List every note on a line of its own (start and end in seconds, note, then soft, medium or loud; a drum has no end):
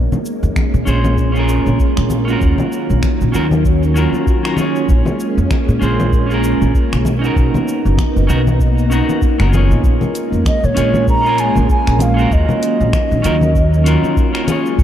0.00 2.39 G#3 medium
0.00 4.54 A#3 medium
0.00 2.39 C#4 medium
0.12 high conga medium
0.12 low conga medium
0.12 shaker soft
0.25 shaker medium
0.43 0.52 F2 medium
0.43 shaker soft
0.56 finger snap medium
0.56 kick loud
0.56 high conga medium
0.56 shaker soft
0.74 0.83 A#2 medium
0.74 shaker soft
0.85 1.57 A#1 medium
0.85 1.31 C#4 medium
0.85 1.31 F4 medium
0.85 1.32 G#4 medium
0.85 1.32 C5 medium
0.85 shaker medium
1.04 high conga medium
1.04 shaker soft
1.18 kick medium
1.18 shaker soft
1.32 2.22 C#4 medium
1.32 2.24 F4 medium
1.32 shaker soft
1.37 2.25 G#4 medium
1.37 2.26 A#4 loud
1.49 shaker medium
1.66 1.75 A#1 medium
1.66 high conga medium
1.66 shaker soft
1.80 kick loud
1.80 shaker soft
1.97 2.35 A#1 medium
1.97 finger snap medium
1.97 shaker soft
2.10 high conga medium
2.10 shaker medium
2.25 3.29 C#4 medium
2.25 3.31 F4 medium
2.25 shaker soft
2.30 3.32 F#4 medium
2.30 3.33 A#4 medium
2.41 2.53 D#2 medium
2.41 4.56 D#3 medium
2.41 4.56 F#3 medium
2.41 7.01 C#4 medium
2.41 kick loud
2.41 shaker soft
2.58 high conga medium
2.58 low conga medium
2.58 shaker soft
2.72 shaker medium
2.90 2.99 A#1 medium
2.90 shaker soft
3.03 finger snap medium
3.03 kick loud
3.03 high conga medium
3.03 shaker soft
3.21 3.30 A#1 medium
3.21 shaker soft
3.32 4.05 D#2 medium
3.32 3.45 C#4 medium
3.32 3.45 F4 medium
3.32 3.46 F#4 medium
3.32 3.47 A#4 loud
3.32 shaker medium
3.51 high conga medium
3.51 shaker soft
3.65 kick loud
3.65 shaker soft
3.83 shaker soft
3.94 4.40 C#4 medium
3.94 4.40 F4 medium
3.94 4.41 F#4 medium
3.94 4.42 A#4 medium
3.94 shaker medium
4.13 high conga medium
4.13 shaker soft
4.27 kick loud
4.27 shaker soft
4.43 4.53 C#4 medium
4.43 4.55 F4 medium
4.43 4.55 F#4 medium
4.43 4.56 A#4 medium
4.43 finger snap medium
4.43 shaker soft
4.54 7.03 A#3 medium
4.54 5.77 C#4 medium
4.54 5.78 F4 medium
4.54 high conga medium
4.58 7.03 G#3 medium
4.58 5.79 G#4 medium
4.58 5.80 C#5 medium
4.58 shaker medium
4.76 shaker soft
4.89 5.01 A#1 medium
4.89 kick loud
4.89 shaker soft
5.05 high conga medium
5.05 low conga medium
5.05 shaker soft
5.20 shaker medium
5.37 5.46 F2 medium
5.37 shaker soft
5.51 finger snap medium
5.51 kick loud
5.51 high conga medium
5.51 shaker soft
5.69 5.77 A#2 medium
5.69 shaker soft
5.79 6.52 A#1 medium
5.79 6.25 C#4 medium
5.79 6.26 F4 medium
5.79 6.26 G#4 medium
5.79 6.27 C5 medium
5.79 shaker medium
6.00 high conga medium
6.00 shaker soft
6.13 kick loud
6.13 shaker soft
6.27 7.02 C#4 medium
6.27 7.03 F4 medium
6.31 7.04 G#4 medium
6.31 7.06 A#4 loud
6.31 shaker soft
6.44 shaker medium
6.61 6.70 A#1 medium
6.61 high conga medium
6.61 shaker soft
6.74 kick loud
6.74 shaker soft
6.93 7.30 B1 medium
6.93 finger snap medium
6.93 shaker soft
7.05 14.44 A#3 medium
7.05 9.81 B3 medium
7.05 9.81 D#4 medium
7.05 high conga medium
7.05 shaker medium
7.19 8.24 C#4 medium
7.19 8.25 D#4 medium
7.24 8.27 F#4 medium
7.24 8.28 A#4 medium
7.24 shaker soft
7.36 7.48 B1 medium
7.36 kick loud
7.36 shaker soft
7.54 high conga medium
7.54 low conga medium
7.54 shaker soft
7.68 shaker medium
7.85 7.94 F#1 medium
7.85 shaker soft
7.98 finger snap medium
7.98 kick loud
7.98 high conga medium
7.98 shaker soft
8.16 8.25 F#1 medium
8.16 shaker soft
8.27 9.00 B1 medium
8.27 8.40 C#4 medium
8.27 8.40 D#4 medium
8.27 8.41 F#4 medium
8.27 8.41 A#4 loud
8.27 shaker medium
8.47 high conga medium
8.47 shaker soft
8.60 kick loud
8.60 shaker soft
8.78 shaker soft
8.90 9.35 C#4 medium
8.90 9.36 D#4 medium
8.90 9.36 F#4 medium
8.90 9.37 A#4 medium
8.90 shaker medium
9.09 high conga medium
9.09 shaker soft
9.22 kick medium
9.22 shaker soft
9.38 9.72 F#1 loud
9.38 9.48 C#4 medium
9.38 9.50 D#4 medium
9.38 9.50 F#4 medium
9.38 9.51 A#4 medium
9.38 finger snap medium
9.38 shaker soft
9.50 10.72 C#4 medium
9.50 10.73 F4 medium
9.50 shaker medium
9.54 10.74 G#4 medium
9.54 10.76 C#5 medium
9.54 high conga medium
9.71 9.79 B1 medium
9.71 shaker soft
9.84 9.96 A#1 medium
9.84 12.29 G#3 medium
9.84 12.29 C#4 medium
9.84 kick loud
9.84 shaker soft
10.01 high conga medium
10.01 low conga medium
10.01 shaker soft
10.15 closed hi-hat medium
10.15 shaker medium
10.32 10.41 F2 medium
10.32 shaker soft
10.45 10.67 D#5 medium
10.45 finger snap medium
10.45 kick loud
10.45 high conga medium
10.45 shaker soft
10.64 10.72 A#2 medium
10.64 11.08 C#5 medium
10.64 shaker soft
10.75 11.47 A#1 medium
10.75 11.20 C#4 medium
10.75 11.21 F4 medium
10.75 11.21 G#4 medium
10.75 11.22 C#5 medium
10.75 closed hi-hat medium
10.75 shaker medium
10.94 high conga medium
10.94 shaker soft
11.07 11.42 A#5 loud
11.07 kick loud
11.07 shaker soft
11.22 12.12 C#4 medium
11.22 12.13 F4 medium
11.26 12.15 G#4 medium
11.26 12.16 A#4 loud
11.26 shaker soft
11.38 11.70 G#5 loud
11.38 closed hi-hat medium
11.38 shaker medium
11.56 11.65 A#1 medium
11.56 high conga medium
11.56 shaker soft
11.69 12.04 G#5 medium
11.69 kick medium
11.69 shaker soft
11.87 12.24 A#1 medium
11.87 finger snap medium
11.87 shaker soft
11.99 12.34 F5 medium
11.99 closed hi-hat medium
11.99 high conga medium
11.99 shaker medium
12.14 13.19 C#4 medium
12.14 13.20 F4 medium
12.19 13.21 F#4 medium
12.19 13.23 A#4 medium
12.19 shaker soft
12.31 12.43 D#2 medium
12.31 14.45 D#3 medium
12.31 14.45 F#3 medium
12.31 14.83 C#4 medium
12.31 14.18 D#5 medium
12.31 kick loud
12.31 shaker soft
12.49 high conga medium
12.49 low conga medium
12.49 shaker soft
12.63 closed hi-hat medium
12.63 shaker medium
12.80 12.89 A#1 medium
12.80 shaker soft
12.93 finger snap medium
12.93 kick medium
12.93 high conga medium
12.93 shaker soft
13.11 13.20 A#1 medium
13.11 shaker soft
13.22 13.95 D#2 loud
13.22 13.34 C#4 medium
13.22 13.35 F4 medium
13.22 13.36 F#4 medium
13.22 13.36 A#4 loud
13.22 closed hi-hat medium
13.22 shaker medium
13.41 high conga medium
13.41 shaker soft
13.55 kick medium
13.55 shaker soft
13.74 shaker soft
13.84 14.29 C#4 medium
13.84 14.30 F4 medium
13.84 14.31 F#4 medium
13.84 14.31 A#4 loud
13.84 closed hi-hat medium
13.84 shaker medium
14.04 high conga medium
14.04 shaker soft
14.17 kick medium
14.17 shaker soft
14.32 14.43 C#4 medium
14.32 14.44 F4 medium
14.32 14.45 F#4 medium
14.32 14.45 A#4 medium
14.32 finger snap medium
14.32 shaker soft
14.44 14.83 G#3 medium
14.44 14.83 A#3 medium
14.44 14.83 C#4 medium
14.44 14.83 F4 medium
14.44 closed hi-hat medium
14.44 high conga medium
14.44 shaker medium
14.49 14.83 G#4 medium
14.49 14.83 C#5 medium
14.66 shaker soft
14.79 14.83 A#1 medium
14.79 kick loud
14.79 shaker soft